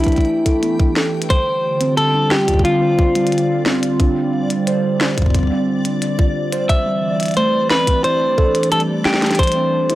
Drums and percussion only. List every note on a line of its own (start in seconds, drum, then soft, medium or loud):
0.04 kick medium
0.04 closed hi-hat soft
0.08 closed hi-hat soft
0.12 closed hi-hat soft
0.16 kick medium
0.16 closed hi-hat soft
0.21 closed hi-hat soft
0.25 closed hi-hat soft
0.46 kick medium
0.46 closed hi-hat medium
0.63 closed hi-hat medium
0.80 kick loud
0.96 snare loud
1.22 closed hi-hat medium
1.30 kick loud
1.30 closed hi-hat medium
1.81 closed hi-hat medium
1.98 closed hi-hat medium
2.31 snare loud
2.48 kick soft
2.48 closed hi-hat medium
2.54 kick medium
2.59 kick medium
2.65 closed hi-hat medium
2.99 kick medium
3.15 closed hi-hat medium
3.27 closed hi-hat medium
3.32 closed hi-hat medium
3.38 closed hi-hat soft
3.66 snare loud
3.83 closed hi-hat medium
4.00 kick loud
4.00 closed hi-hat medium
4.50 closed hi-hat medium
4.67 closed hi-hat medium
5.01 snare loud
5.18 kick medium
5.18 closed hi-hat medium
5.22 kick medium
5.26 kick medium
5.30 kick soft
5.35 kick medium
5.35 closed hi-hat medium
5.39 kick soft
5.43 kick soft
5.47 kick soft
5.85 closed hi-hat medium
6.02 closed hi-hat medium
6.19 kick loud
6.52 closed hi-hat medium
6.69 kick loud
6.69 closed hi-hat medium
7.20 closed hi-hat medium
7.23 closed hi-hat medium
7.26 closed hi-hat soft
7.28 closed hi-hat soft
7.31 closed hi-hat soft
7.34 closed hi-hat soft
7.37 closed hi-hat medium
7.70 snare loud
7.87 kick medium
7.87 closed hi-hat medium
8.04 closed hi-hat medium
8.38 kick medium
8.55 closed hi-hat medium
8.63 closed hi-hat medium
8.72 closed hi-hat medium
8.80 closed hi-hat soft
9.05 snare loud
9.14 snare medium
9.22 snare medium
9.22 closed hi-hat soft
9.26 closed hi-hat soft
9.31 snare medium
9.31 closed hi-hat soft
9.35 closed hi-hat soft
9.39 kick loud
9.39 closed hi-hat medium
9.43 closed hi-hat soft
9.47 closed hi-hat medium
9.52 closed hi-hat medium
9.90 closed hi-hat medium